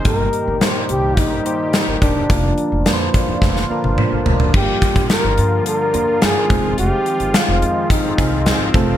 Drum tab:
CC |----------------|----------------|x---------------|----------------|
HH |x-x-x-x-x-x-x-x-|x-x-x-x---------|--xxx-x-x-x-x-x-|x-xxx-x-x-x-x-x-|
SD |----o-------o---|----o---oo------|----o-------o---|----o-------o---|
T1 |----------------|-----------o----|----------------|----------------|
T2 |----------------|------------o---|----------------|----------------|
FT |----------------|--------------oo|----------------|----------------|
BD |o-------o-----o-|o-----o-o-------|o-oo----------o-|--------o-o---o-|